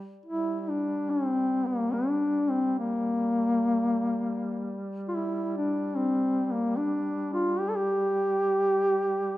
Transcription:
0.26 G3 E4
0.61 E4
0.69 D4
1.11 C4
1.67 A#3
1.94 D4
2.51 C4
2.79 A#3
5.08 F4
5.15 E4
5.58 D4
5.97 C4
6.46 C4
6.52 A#3
6.77 D4
7.34 F4
7.59 G4
7.69 A4
7.76 G4

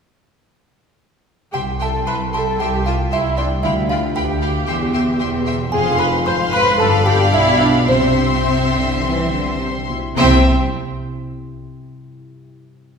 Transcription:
1.53 C2 C3 G4 E5 G5 C6
1.80 E4 A4 E5 G5 A5 C6
2.07 C2 B4 C5 E5 G5 B5 C6
2.33 G4 A4 E5 G5 A5 C6
2.59 C2 G3 G4 E5 G5 C6
2.85 E4 F4 E5 F5 G5 C6
3.11 C2 E4 C5 E5 G5 C6
3.37 D4 G4 D5 E5 G5 C6
3.63 D2 D3 E4 E5 F5 G5 B5
3.89 F4 F5 G5 B5
4.15 D2 G4 B4 F5 G5 B5
4.42 G4 F5 G5 B5
4.68 E1 E2 E5 G5 C6
4.94 E4 E5 G5 C6
5.19 E1 E2 C5 E5 G5 C6
5.46 G4 E5 G5 C6
5.72 F1 F2 G#4 C5 F5 G#5 C6
5.99 C4 B4 B5
6.25 G#1 G#2 C5 F5 C6
6.52 F4 B4 B5
6.79 G1 G2 A4 D5 F5 A5 B5
7.06 B3 G4 G5
7.33 B1 B2 E4 G4 E5
7.61 D4 F4 D5
7.88 C2 C3 C4 C5 E5 C6
8.18 C4
8.45 C3 G4
8.74 D3 E4
9.02 E3 G3
9.31 D3 C4
9.60 C3 G4
9.89 B2 E4
10.15 C2 C3 C4 C5 E5 G5 C6
10.19 E4 G4
10.24 E5

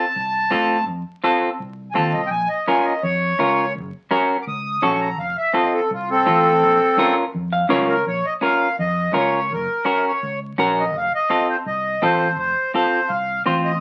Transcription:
Already playing: A5
0.16 C2
0.51 A2 C4 F4 A4
0.88 F2
1.24 C4 F4 A4
1.60 C2
1.91 C4 F4 G#5
1.96 D#2 A4 A5
2.13 C2 D#5
2.27 G5 G#5
2.31 A#1
2.49 D#5
2.67 C#4 F4 A#4 G#5
2.85 D#5
3.03 F2 C#5
3.39 C#2 C#4 F4 A#4
3.75 F#1
4.11 C#4 F#4 A#4
4.42 D6
4.47 C#2 D#6
4.82 A#1 C#4 F#4 A4 C#6
5.01 A#5
5.19 F1 F5
5.38 E5
5.53 C4 F4 A4 D#5
5.74 A4
5.91 C2 F4
6.10 C4 A4
6.26 A1 C4 F4 A4
6.63 A#1
6.98 C#4 F4 A#4
7.34 F2
7.53 F5
7.69 C#2 C#4 F4 A#4 C#5
7.89 A#4
8.06 A#1 C#5
8.26 D#5
8.41 C#4 F4 A#4 F5
8.79 F2 D#5
9.13 C#2 C#4 F4 A#4 C#5
9.51 F#1 A#4
9.85 C#4 F#4 A#4
9.90 A#4
10.07 C#5
10.23 C#2
10.58 A#1 C#4 F#4 A#4
10.80 D#5
10.94 F1 F5
11.15 D#5
11.30 C4 F4 A4
11.50 C5
11.66 C2 D#5
12.02 A1 C4 F4 A4 C5
12.38 F1 C5
12.74 C4 F4 A4 C5
13.09 C2 F5
13.46 A1 C4 F4 C5
13.64 D#5

